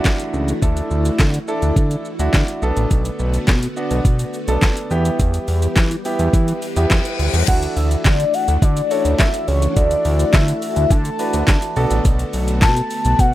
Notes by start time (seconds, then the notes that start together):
Already playing: E3 A3 D4 E4 F#4, downlifter
0.04 kick, snare, clap, closed hi-hat, shaker
0.20 closed hi-hat, shaker
0.34 C#2, shaker
0.48 closed hi-hat, shaker
0.62 D2 D4 E4 A4, kick, closed hi-hat, shaker
0.77 closed hi-hat, shaker
0.91 D2, shaker
1.05 closed hi-hat, shaker
1.19 D3, kick, snare, clap, closed hi-hat, shaker
1.34 closed hi-hat, shaker
1.48 D4 E4 A4, shaker
1.62 D2, closed hi-hat, shaker
1.76 D3, kick, closed hi-hat, shaker
1.91 closed hi-hat, shaker
2.05 shaker
2.19 D2 D4 E4 F#4, closed hi-hat, shaker
2.33 D3, kick, snare, clap, closed hi-hat, shaker
2.48 closed hi-hat, shaker
2.62 B1 D3 A3 B3 D4 F#4 A4, shaker
2.77 A1, closed hi-hat, shaker
2.91 B1, kick, closed hi-hat, shaker
3.05 closed hi-hat, shaker
3.19 B1, shaker
3.34 closed hi-hat, shaker
3.47 B2, kick, snare, clap, closed hi-hat, shaker
3.63 closed hi-hat, shaker
3.76 B3 D4 F#4, shaker
3.91 B1, closed hi-hat, shaker
4.05 B2, kick, closed hi-hat, shaker
4.19 closed hi-hat, shaker
4.34 shaker
4.48 B1 B3 D4 A4, closed hi-hat, shaker
4.62 kick, snare, clap, closed hi-hat, shaker
4.77 closed hi-hat, shaker
4.91 E2 E3 G3 B3 E4 G4, shaker
5.05 closed hi-hat, shaker
5.20 E2, kick, closed hi-hat, shaker
5.34 closed hi-hat, shaker
5.48 E2, open hi-hat, shaker
5.62 closed hi-hat, shaker
5.76 E3, kick, snare, clap, closed hi-hat, shaker
5.91 closed hi-hat, shaker
6.05 B3 E4 G4, open hi-hat, shaker
6.19 E2, closed hi-hat, shaker
6.33 E3, kick, closed hi-hat, reverse cymbal, shaker
6.48 closed hi-hat, shaker
6.62 open hi-hat, shaker
6.76 E2 B3 E4 G4, closed hi-hat, shaker
6.90 E2, kick, snare, clap, closed hi-hat, shaker
7.05 closed hi-hat, shaker
7.19 D2, open hi-hat, shaker
7.34 E2, closed hi-hat, shaker
7.48 D2 E3 A3 D4 E4 F#4 A4 F#5, kick, closed hi-hat, crash, shaker
7.62 closed hi-hat, shaker
7.77 D2 E5, open hi-hat, shaker
7.91 closed hi-hat, shaker
8.05 D3 D5, kick, snare, clap, closed hi-hat, shaker
8.20 closed hi-hat, shaker
8.34 F#5, open hi-hat, shaker
8.48 D2, closed hi-hat, shaker
8.62 D3 D5, kick, closed hi-hat, shaker
8.77 closed hi-hat, shaker
8.90 D4 E4 F#4 A4 C#5, open hi-hat, shaker
9.05 D2, closed hi-hat, shaker
9.19 E5, kick, snare, clap, closed hi-hat, shaker
9.34 closed hi-hat, shaker
9.48 C#2 C#5, open hi-hat, shaker
9.62 closed hi-hat, shaker
9.76 D2 D4 E4 F#4 A4 D5, kick, closed hi-hat, shaker
9.91 closed hi-hat, shaker
10.05 D2, open hi-hat, shaker
10.19 closed hi-hat, shaker
10.33 D3 E5, kick, snare, clap, closed hi-hat, shaker
10.48 closed hi-hat, shaker
10.62 open hi-hat, shaker
10.76 D2, closed hi-hat, shaker
10.91 D3 A5, kick, closed hi-hat, shaker
11.05 closed hi-hat, shaker
11.19 D4 E4 F#4 B4, open hi-hat, shaker
11.33 D2, closed hi-hat, shaker
11.47 D3, kick, snare, clap, closed hi-hat, shaker
11.62 closed hi-hat, shaker
11.76 B1 D3 B3 D4 F#4 A4, open hi-hat, shaker
11.91 A1, closed hi-hat, shaker
12.05 B1, kick, closed hi-hat, shaker
12.19 closed hi-hat, shaker
12.33 B1, open hi-hat, shaker
12.48 closed hi-hat, shaker
12.61 B2 A5, kick, snare, clap, closed hi-hat, shaker
12.77 closed hi-hat, shaker
12.91 open hi-hat, shaker
13.05 B1, closed hi-hat, shaker
13.19 B2 F#5, kick, closed hi-hat, shaker